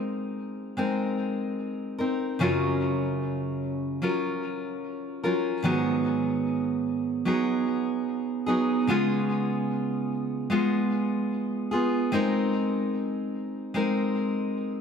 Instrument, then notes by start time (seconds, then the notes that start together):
steel-string acoustic guitar
Already playing: G#3 C4 D#4 A#4
0.77 G#3 C4 D#4 A#4
1.98 C4 D#4 A#4
2.39 F#2 C#3 F#3 C#4 F4 A#4
4.02 F#3 C#4 F4 A#4
5.24 F#3 C#4 F4 A#4
5.63 G#2 D#3 F#3 B3 D#4 G#4
7.25 F#3 B3 D#4 G#4
8.46 F#3 B3 D#4 G#4
8.87 C#3 G#3 B3 F4 G#4
10.50 G#3 B3 F4 G#4
11.71 B3 F4 G#4
12.12 G#3 C4 D#4 A#4
13.74 G#3 C4 D#4 A#4